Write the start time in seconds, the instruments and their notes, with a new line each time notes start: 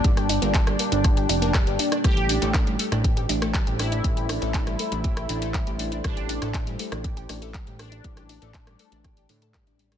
Already playing: ambient pad A#3 D4 G4 G5, analog polysynth D4
0.04 analog synth bass G1, synth pluck G3, kick, closed hi-hat
0.17 synth pluck G4, cross-stick, closed hi-hat
0.29 synth pluck D4, open hi-hat
0.42 analog synth bass G1, synth pluck A#3, closed hi-hat
0.54 synth pluck D4, kick, clap, closed hi-hat
0.67 synth pluck G3, cross-stick, closed hi-hat
0.79 synth pluck A#3, open hi-hat
0.92 analog synth bass G1, synth pluck D4, closed hi-hat
1.04 synth pluck G4, kick, cross-stick, closed hi-hat
1.17 synth pluck G4, closed hi-hat
1.29 analog synth bass F1, synth pluck D4, open hi-hat
1.42 synth pluck A#3, closed hi-hat
1.54 synth pluck G3, kick, cross-stick, clap, closed hi-hat
1.67 analog synth bass G1, synth pluck G4, closed hi-hat
1.79 synth pluck D4, open hi-hat
1.92 synth pluck D4, cross-stick, closed hi-hat
2.04 analog synth bass A1, synth pluck G3, ambient pad E4 A4 C5, analog polysynth G4, kick, cross-stick, closed hi-hat
2.17 synth pluck G4, closed hi-hat
2.29 synth pluck D4, open hi-hat
2.42 analog synth bass A1, synth pluck A3, closed hi-hat
2.54 synth pluck D4, kick, cross-stick, clap, closed hi-hat
2.67 synth pluck G3, closed hi-hat
2.79 synth pluck A3, open hi-hat
2.92 analog synth bass A1, synth pluck D4, cross-stick, closed hi-hat
3.04 synth pluck G4, kick, closed hi-hat
3.17 synth pluck G4, closed hi-hat
3.29 analog synth bass A1, synth pluck D4, open hi-hat
3.42 synth pluck A3, cross-stick, closed hi-hat
3.54 synth pluck G3, kick, clap, closed hi-hat
3.67 analog synth bass A1, synth pluck G4, closed hi-hat
3.79 synth pluck D4, analog polysynth E4, cross-stick, open hi-hat
3.92 synth pluck D4, closed hi-hat
4.04 analog synth bass A1, synth pluck G3, kick, closed hi-hat
4.17 synth pluck G4, closed hi-hat
4.29 synth pluck D4, cross-stick, open hi-hat
4.42 analog synth bass A1, synth pluck A3, closed hi-hat
4.54 synth pluck D4, kick, clap, closed hi-hat
4.67 synth pluck G3, cross-stick, closed hi-hat
4.79 synth pluck A3, open hi-hat
4.92 analog synth bass A1, synth pluck D4, closed hi-hat
5.04 synth pluck G4, kick, closed hi-hat
5.17 synth pluck G4, cross-stick, closed hi-hat
5.29 analog synth bass A1, synth pluck D4, open hi-hat
5.42 synth pluck A3, closed hi-hat
5.54 synth pluck G3, kick, cross-stick, clap, closed hi-hat
5.67 analog synth bass A1, synth pluck G4, closed hi-hat
5.79 synth pluck D4, open hi-hat
5.92 synth pluck D4, closed hi-hat
6.04 synth pluck G3, analog polysynth D4, kick, cross-stick, closed hi-hat
6.17 synth pluck G4, closed hi-hat
6.29 synth pluck D4, open hi-hat
6.42 analog synth bass A1, synth pluck A3, cross-stick, closed hi-hat
6.54 kick, clap, closed hi-hat
6.67 synth pluck G3, closed hi-hat
6.79 synth pluck A3, open hi-hat
6.92 analog synth bass A1, synth pluck D4, cross-stick, closed hi-hat
7.04 synth pluck G4, kick, closed hi-hat
7.17 synth pluck G4, closed hi-hat
7.29 analog synth bass A1, synth pluck D4, cross-stick, open hi-hat
7.42 synth pluck A3, closed hi-hat
7.54 synth pluck G3, kick, clap, closed hi-hat
7.67 analog synth bass A1, synth pluck G4, closed hi-hat
7.79 synth pluck D4, analog polysynth D4, cross-stick, open hi-hat
7.92 synth pluck D4, closed hi-hat
8.04 analog synth bass A1, synth pluck G3, kick, closed hi-hat
8.17 synth pluck G4, cross-stick, closed hi-hat
8.29 synth pluck D4, open hi-hat
8.42 analog synth bass A1, synth pluck A3, closed hi-hat
8.54 synth pluck D4, kick, clap, closed hi-hat
8.67 synth pluck G3, cross-stick, closed hi-hat
8.79 synth pluck A3, open hi-hat
8.92 analog synth bass A1, synth pluck D4, closed hi-hat
9.04 synth pluck G4, kick, cross-stick, closed hi-hat
9.17 synth pluck G4, closed hi-hat
9.29 analog synth bass A2, synth pluck D3, open hi-hat
9.42 synth pluck A4, closed hi-hat
9.54 synth pluck G3, kick, cross-stick, clap, closed hi-hat
9.67 analog synth bass A1, synth pluck D4, closed hi-hat
9.79 synth pluck G3, open hi-hat
9.92 synth pluck G3, cross-stick, closed hi-hat